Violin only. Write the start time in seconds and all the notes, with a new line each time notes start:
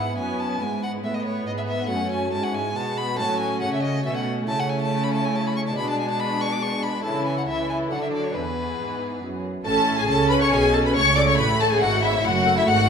Already playing: F#5
0.18 G#5
0.39 A5
0.62 G#5
0.83 F#5
1.04 E5
1.14 D#5
1.25 C#5
1.47 D#5
1.58 E5
1.68 E5
1.89 F#5
2.12 G#5
2.33 A5
2.44 F#5
2.54 G#5
2.75 A5
2.97 B5
3.19 A5
3.40 G#5
3.62 F#5
3.73 E5
3.83 D#5
4.05 E5
4.16 F#5
4.48 A5
4.60 F#5
4.70 G#5
4.82 A5
5.04 B5
5.14 A5
5.25 G#5
5.35 A5
5.47 B5
5.57 C#6
5.67 A5
5.78 B5
5.89 A5
6.00 G#5
6.10 A5
6.20 B5
6.41 C#6
6.52 D6
6.62 C#6
6.83 B5
7.04 A5
7.26 G#5
7.38 F#5
7.47 E5
7.70 G#5
7.91 F#5
8.03 E5
8.13 D5
8.25 C#5
8.34 B4
9.66 A5
9.98 G#5
10.08 A5
10.30 B5
10.42 C#6
10.52 G#5
10.74 A5
10.85 B5
10.96 C#6
11.17 D6
11.28 C#6
11.38 B5
11.61 A5
11.71 G#5
11.81 F#5
12.03 E5
12.25 F#5
12.58 E5
12.68 F#5